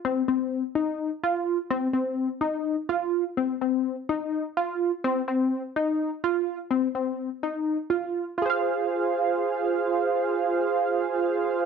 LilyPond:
\new Staff \with { instrumentName = "Synth arpeggio sound" } { \time 7/8 \key f \minor \tempo 4 = 126 c'8 c'4 ees'4 f'4 | c'8 c'4 ees'4 f'4 | c'8 c'4 ees'4 f'4 | c'8 c'4 ees'4 f'4 |
c'8 c'4 ees'4 f'4 | <f' aes' c'' f''>2.~ <f' aes' c'' f''>8~ | <f' aes' c'' f''>2.~ <f' aes' c'' f''>8 | }